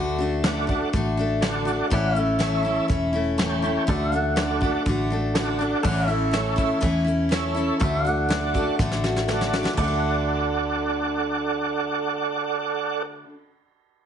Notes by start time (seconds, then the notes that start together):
Already playing: D2 D3 A3 D4 F#4 D5
0.18 A3 D4 F#4, closed hi-hat
0.43 D3 A3 D4 F#4 A4 D5 F#5, snare, closed hi-hat
0.67 D4 F#4, kick
0.71 A3
0.93 A1 D3 A3 D4 F#4, kick, closed hi-hat
1.17 A3 D4 F#4
1.41 D3 A3 D4 F#4 A4 D5 F#5, snare, closed hi-hat
1.65 A3 D4 F#4, closed hi-hat
1.90 A1 A2 E3 A3 C#4 E4 A4 D5, kick, closed hi-hat
1.95 F#5
2.13 C#4 E4 C#5, closed hi-hat
2.18 A3 E5
2.39 A2 E3 A3 C#4 E4 A4 C#5 E5, snare, closed hi-hat
2.63 A3 C#4 E4
2.88 E1 E3 A3 C#4 E4, kick, closed hi-hat
3.13 A3 C#4 E4
3.38 A2 E3 A3 C#4 E4 A4 C#5 G5, snare, closed hi-hat
3.62 A3 C#4 E4, closed hi-hat
3.87 D2 D3 A3 D4 F#4 A4 D5, kick, closed hi-hat
3.92 E5
4.12 A3 D4 F#4, closed hi-hat
4.17 F#5
4.36 D3 A3 D4 F#4 A4 D5 F#5, snare, closed hi-hat
4.61 A3 D4 F#4, kick
4.86 A1 D3 A3 D4 F#4, kick, closed hi-hat
5.10 A3 D4 F#4
5.34 D3 A3 D4 F#4 A4 D5 F#5, snare, closed hi-hat
5.59 A3 D4 F#4, closed hi-hat
5.83 A1 A2 E3 A3 C#4 E4 A4 D5 F#5, kick, crash
6.05 E4 C#5
6.09 A3 C#4 E5, closed hi-hat
6.31 E3 A3 C#4 E4 A4 C#5 E5, snare, closed hi-hat
6.56 A3 C#4 E4, kick, closed hi-hat
6.81 E2 A2 E3 A3 C#4 E4, kick, closed hi-hat
7.05 A3 C#4 E4, closed hi-hat
7.29 E3 A3 C#4 E4 A4 C#5 E5, snare, closed hi-hat
7.55 A3 C#4 E4, closed hi-hat
7.80 D2 D3 A3 D4 F#4 A4 C#5 E5, kick, closed hi-hat
8.01 F#4 D5
8.06 A3 D4 F#5, closed hi-hat
8.29 D3 A3 D4 F#4 A4 D5 F#5, snare, closed hi-hat
8.54 A3 D4 F#4, kick, closed hi-hat
8.79 A1 D3 A3 D4 F#4, kick, snare
8.91 snare
9.04 A3 D4 F#4, snare
9.16 snare
9.27 D3 A3 D4 A4 D5 F#5, snare
9.31 F#4
9.41 snare
9.53 A3 D4 F#4, snare
9.65 snare
9.73 D3 A4 D5, ride
9.77 D2 A3 A4 D5 F#5, kick
9.84 D4
9.88 F#4